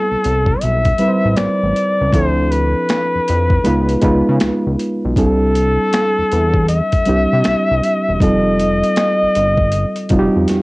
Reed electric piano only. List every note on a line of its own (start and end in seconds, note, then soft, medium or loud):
0.00 0.53 G3 medium
0.00 0.53 B3 medium
0.00 0.54 C4 medium
0.00 0.54 E4 medium
0.00 0.54 A4 medium
0.00 0.99 B4 medium
0.98 2.07 G3 medium
0.98 2.07 C4 medium
0.98 2.08 E4 medium
0.98 1.01 B4 medium
0.98 1.08 B4 medium
1.08 2.11 C5 medium
2.13 3.57 F3 medium
2.13 3.57 C4 medium
2.13 3.58 D4 medium
2.13 3.58 E4 medium
2.13 3.58 A4 medium
3.64 4.00 G#3 medium
3.64 4.00 B3 medium
3.64 4.01 D#4 medium
3.64 4.01 F4 medium
3.64 4.02 B4 medium
4.02 5.10 G#3 medium
4.02 5.11 B3 medium
4.02 5.11 D#4 medium
4.02 5.11 F4 medium
4.02 5.12 B4 medium
5.16 6.60 G3 medium
5.16 6.61 C4 medium
5.16 6.61 D4 medium
5.16 6.62 E4 medium
5.16 6.62 A4 medium
7.06 8.14 G3 medium
7.06 8.15 C4 medium
7.06 8.15 D4 medium
7.06 8.16 E4 medium
7.06 8.16 G4 medium
8.20 9.64 G3 medium
8.20 9.65 C4 medium
8.20 9.65 D#4 medium
8.20 9.65 F4 medium
8.20 9.66 A4 medium
10.10 10.62 G3 medium
10.10 10.62 C4 medium
10.10 10.62 D#4 medium
10.10 10.62 F4 medium
10.10 10.19 F#4 medium
10.19 10.62 G4 medium